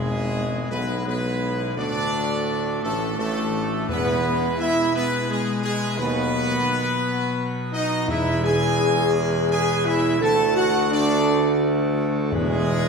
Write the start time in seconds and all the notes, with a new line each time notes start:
Already playing: G#1 E2 B2 G#3 E4 G#4 B4
0.71 B1 B3 B4
1.06 B1 B3 B4
1.76 D2 A2 A3 D4 F#4 D5
2.82 A1 A3 A4
3.16 A1 A3 A4
3.89 E2 B2 G#3 B3 E4 B4
4.58 E4 E5
4.94 B3 B4
5.29 G#3 G#4
5.62 G#3 G#4
5.97 D#2 F#3 B3 F#4 B4
7.72 D#4 D#5
8.08 E2 G#3 E4 E5
8.42 G#4 G#5
9.49 G#4 G#5
9.85 E4 E5
10.19 D2 D3 A3 F#4 A4 A5
10.55 F#4 F#5
10.90 D4 D5
12.31 E2 B2 G#3 E4 G#4 B4